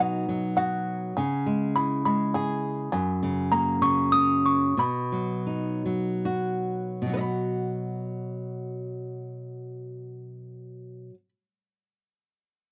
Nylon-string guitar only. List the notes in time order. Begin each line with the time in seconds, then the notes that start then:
Already playing: B2 F#3
0.00 D#4
0.29 F#3
0.57 F#4
1.17 C#3
1.46 G#3
1.76 E4
2.06 G#3
2.35 G#4
2.93 F#2
3.23 C#3
3.52 A#3
3.82 C#3
4.12 C#4
4.77 B2
5.12 F#3
5.46 D#4
5.86 F#3
6.25 F#4
7.02 B2
7.06 F#3 F#4
7.13 B4 D#5
7.21 B5